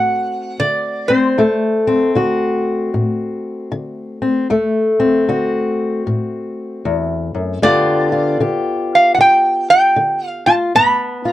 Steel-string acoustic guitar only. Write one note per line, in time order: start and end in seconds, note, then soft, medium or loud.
0.00 0.53 A2 medium
0.00 1.38 A3 medium
0.00 1.10 C4 medium
0.00 1.90 F#4 medium
0.60 1.32 D3 medium
1.10 1.41 C4 medium
1.38 2.10 D2 medium
1.38 4.47 A3 medium
1.87 4.21 C4 medium
2.15 2.88 D3 medium
2.15 4.47 F#4 medium
2.94 3.66 A2 medium
3.72 4.44 D3 medium
4.22 4.47 C4 soft
4.50 5.22 D2 medium
4.50 7.59 A3 medium
5.00 7.59 C4 medium
5.29 6.01 D3 medium
5.29 7.59 F#4 medium
6.07 6.79 A2 medium
6.85 7.34 E2 medium
7.35 7.62 F#2 medium
7.62 8.35 G2 medium
7.62 8.39 D3 medium
7.62 10.72 B3 medium
7.62 8.12 F4 medium
7.62 8.41 G4 medium
8.12 10.46 F4 medium
8.40 9.13 D3 medium
8.40 10.72 G4 medium
9.18 9.91 D3 medium
9.96 10.69 D3 medium
10.47 10.72 F4 medium
10.75 11.32 G2 medium
10.75 11.32 B3 medium
11.25 11.32 F4 medium